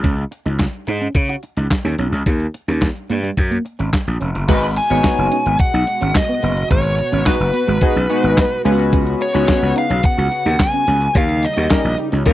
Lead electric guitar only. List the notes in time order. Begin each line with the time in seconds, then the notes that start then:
4.77 G#5
5.60 F#5
6.16 D#5
6.71 C#5
7.26 B4
9.22 C#5
9.78 F5
10.05 F#5
10.61 G#5
11.17 F5
11.45 D#5